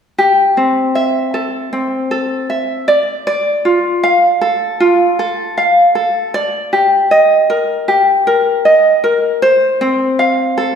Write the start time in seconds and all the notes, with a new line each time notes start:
0.18 G4
0.57 C4
0.95 E5
1.34 A4
1.73 C4
2.11 A4
2.50 E5
2.88 D5
3.27 D5
3.65 F4
4.03 F5
4.41 A4
4.80 F4
5.19 A4
5.58 F5
5.95 A4
6.34 D5
6.73 G4
7.11 D#5
7.50 A#4
7.88 G4
8.27 A#4
8.65 D#5
9.04 A#4
9.42 C5
9.81 C4
10.19 F5
10.58 A4